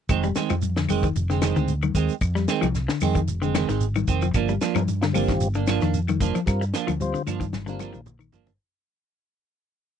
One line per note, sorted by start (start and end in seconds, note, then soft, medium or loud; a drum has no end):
0.09 0.33 F1 medium
0.09 0.26 D#3 medium
0.09 0.26 G#3 medium
0.09 0.27 C4 medium
0.09 kick medium
0.09 closed hi-hat medium
0.09 claves medium
0.09 shekere medium
0.23 0.42 G3 medium
0.23 shekere soft
0.35 0.52 D#3 medium
0.35 0.53 G#3 medium
0.35 0.53 C4 medium
0.35 muted fingered electric bass stroke soft
0.35 snare medium
0.35 closed hi-hat soft
0.35 shekere medium
0.50 0.86 F2 medium
0.50 0.69 F3 medium
0.50 high conga medium
0.50 claves medium
0.50 shekere soft
0.62 closed hi-hat medium
0.62 high conga medium
0.62 shekere medium
0.77 0.95 D3 medium
0.77 snare medium
0.77 shekere soft
0.89 1.13 F1 medium
0.89 1.06 D#3 medium
0.89 1.06 G#3 medium
0.89 1.06 C4 medium
0.89 open hi-hat medium
0.89 high conga medium
0.89 claves medium
0.89 shekere medium
1.03 1.22 D#3 medium
1.03 kick medium
1.03 closed hi-hat soft
1.03 shekere soft
1.16 1.53 F1 medium
1.16 closed hi-hat medium
1.16 shekere medium
1.30 1.48 D3 medium
1.30 1.42 G#3 soft
1.30 1.42 C4 soft
1.30 snare soft
1.30 shekere soft
1.42 1.56 D#3 medium
1.42 1.56 G#3 medium
1.42 1.55 C4 medium
1.42 snare medium
1.42 closed hi-hat soft
1.42 high conga medium
1.42 claves medium
1.42 shekere medium
1.56 1.92 D2 medium
1.56 1.75 D#3 medium
1.56 1.72 G#3 soft
1.56 1.72 C4 soft
1.56 shekere soft
1.68 closed hi-hat medium
1.68 shekere medium
1.83 2.01 D#3 medium
1.83 high conga medium
1.83 claves medium
1.83 shekere soft
1.95 2.08 D#2 medium
1.95 2.12 D#3 medium
1.95 2.12 G#3 medium
1.95 2.13 C4 medium
1.95 kick medium
1.95 closed hi-hat soft
1.95 shekere medium
2.09 muted fingered electric bass stroke soft
2.09 closed hi-hat soft
2.09 shekere soft
2.21 2.46 F2 loud
2.21 kick medium
2.21 closed hi-hat medium
2.21 claves medium
2.21 shekere medium
2.35 2.54 G3 medium
2.35 snare soft
2.35 shekere soft
2.48 2.65 D#3 medium
2.48 2.66 G#3 medium
2.48 2.66 C4 medium
2.48 snare medium
2.48 closed hi-hat soft
2.48 shekere medium
2.61 2.87 C2 medium
2.61 2.80 F3 medium
2.61 closed hi-hat soft
2.61 high conga medium
2.61 claves medium
2.61 shekere soft
2.75 snare soft
2.75 closed hi-hat medium
2.75 shekere medium
2.88 3.07 D3 medium
2.88 snare medium
2.88 shekere soft
3.01 3.26 F2 medium
3.01 3.19 D#3 medium
3.01 3.19 G#3 medium
3.01 3.19 C4 medium
3.01 open hi-hat medium
3.01 high conga medium
3.01 claves medium
3.01 shekere medium
3.15 3.34 D#3 medium
3.15 kick medium
3.15 closed hi-hat soft
3.15 shekere soft
3.27 3.66 F1 medium
3.27 closed hi-hat medium
3.27 shekere medium
3.42 3.60 D3 medium
3.42 3.54 G#3 soft
3.42 3.54 C4 medium
3.42 shekere soft
3.55 3.69 D#3 medium
3.55 3.68 G#3 medium
3.55 3.67 C4 medium
3.55 snare medium
3.55 closed hi-hat soft
3.55 high conga medium
3.55 claves medium
3.55 shekere medium
3.68 4.05 G#1 medium
3.68 3.87 D#3 medium
3.68 3.85 G#3 soft
3.68 3.84 C4 soft
3.68 snare soft
3.68 closed hi-hat soft
3.68 shekere soft
3.81 closed hi-hat medium
3.81 shekere medium
3.95 4.14 D#3 medium
3.95 high conga medium
3.95 claves medium
3.95 shekere soft
4.08 4.32 F1 medium
4.08 4.25 D#3 medium
4.08 4.26 C4 medium
4.08 muted clean electric guitar stroke medium
4.08 kick medium
4.08 closed hi-hat soft
4.08 shekere medium
4.22 4.31 F3 medium
4.22 shekere soft
4.34 4.59 G1 medium
4.34 4.52 F3 medium
4.34 4.52 A#3 medium
4.34 4.52 D4 medium
4.34 kick medium
4.34 closed hi-hat medium
4.34 claves medium
4.34 shekere medium
4.49 4.67 G3 medium
4.49 shekere soft
4.61 4.78 F3 medium
4.61 4.78 A#3 medium
4.61 4.79 D4 medium
4.61 snare medium
4.61 closed hi-hat soft
4.61 shekere medium
4.74 5.11 G2 medium
4.74 4.94 F3 medium
4.74 4.83 G3 medium
4.74 4.83 C4 medium
4.74 4.83 F4 medium
4.74 4.83 A#4 medium
4.74 high conga medium
4.74 claves medium
4.74 shekere soft
4.88 closed hi-hat medium
4.88 high conga medium
4.88 shekere medium
5.01 5.21 D3 medium
5.01 5.06 F4 medium
5.01 5.07 A#4 loud
5.01 snare medium
5.01 shekere soft
5.13 5.39 G1 medium
5.13 5.31 F3 medium
5.13 5.48 G3 medium
5.13 5.32 A#3 medium
5.13 5.48 C4 medium
5.13 5.32 D4 medium
5.13 5.48 F4 medium
5.13 5.49 G4 medium
5.13 open hi-hat medium
5.13 high conga medium
5.13 claves medium
5.13 shekere medium
5.28 5.48 D#3 medium
5.28 kick medium
5.28 snare soft
5.28 closed hi-hat soft
5.28 shekere soft
5.41 5.78 G1 loud
5.41 closed hi-hat medium
5.41 shekere medium
5.54 5.74 D3 medium
5.54 5.67 A#3 soft
5.54 5.68 D4 soft
5.54 shekere soft
5.67 5.82 F3 medium
5.67 5.81 A#3 medium
5.67 5.80 D4 medium
5.67 snare medium
5.67 closed hi-hat medium
5.67 high conga medium
5.67 claves medium
5.67 shekere medium
5.81 6.18 F2 medium
5.81 6.01 D#3 medium
5.81 5.98 A#3 soft
5.81 5.97 D4 medium
5.81 snare soft
5.81 shekere soft
5.94 closed hi-hat medium
5.94 shekere medium
6.08 6.27 D#3 medium
6.08 high conga medium
6.08 claves medium
6.08 shekere soft
6.20 6.34 F1 medium
6.20 6.38 F3 medium
6.20 6.38 A#3 medium
6.20 6.38 D4 medium
6.20 kick medium
6.20 closed hi-hat soft
6.20 high conga medium
6.20 shekere medium
6.35 6.44 F3 medium
6.35 muted fingered electric bass stroke soft
6.35 closed hi-hat soft
6.35 shekere soft
6.46 6.72 G2 loud
6.46 6.64 G3 medium
6.46 6.64 C4 medium
6.46 6.65 F4 medium
6.46 6.65 A#4 medium
6.46 kick medium
6.46 snare soft
6.46 closed hi-hat medium
6.46 claves medium
6.46 shekere medium
6.61 muted clean electric guitar stroke medium
6.61 shekere soft
6.74 6.91 F3 medium
6.74 6.91 A#3 medium
6.74 6.92 D4 medium
6.74 snare medium
6.74 closed hi-hat medium
6.74 shekere medium
6.87 7.13 D2 medium
6.87 7.06 F3 medium
6.87 closed hi-hat medium
6.87 high conga medium
6.87 claves medium
6.87 shekere soft
7.00 7.22 G3 medium
7.00 7.22 C4 medium
7.00 7.22 F4 medium
7.00 7.22 C5 loud
7.00 closed hi-hat medium
7.00 high conga medium
7.00 shekere medium
7.14 7.33 D3 medium
7.14 shekere soft
7.27 7.51 G2 medium
7.27 7.44 F3 medium
7.27 7.44 A#3 medium
7.27 7.44 D4 medium
7.27 closed hi-hat medium
7.27 high conga medium
7.27 claves medium
7.27 shekere medium
7.40 7.59 D#3 medium
7.40 kick medium
7.40 closed hi-hat soft
7.40 shekere soft
7.53 7.91 G1 medium
7.53 snare soft
7.53 high conga medium
7.53 shekere medium
7.66 7.85 D3 medium
7.66 8.00 G3 medium
7.66 7.80 A#3 soft
7.66 8.01 C4 medium
7.66 7.80 D4 medium
7.66 8.01 F4 medium
7.66 8.01 A#4 medium
7.66 high conga medium
7.66 shekere soft
7.79 7.97 F3 medium
7.79 7.97 A#3 medium
7.79 7.97 D4 medium
7.79 high tom medium
7.79 high conga medium
7.79 claves medium
7.79 shekere medium
7.93 8.30 A#1 medium
7.93 8.11 D#3 medium
7.93 high tom medium
7.93 low conga medium
7.93 shekere soft
8.06 mid tom medium
8.06 low conga medium
8.06 shekere medium
8.19 8.38 D#3 medium
8.19 claves medium
8.19 shekere soft
8.32 8.57 G1 medium
8.32 8.50 F3 medium
8.32 8.50 A#3 medium
8.32 8.50 D4 medium
8.32 floor tom medium
8.32 shekere medium
8.47 floor tom medium
8.47 low conga medium
8.47 shekere soft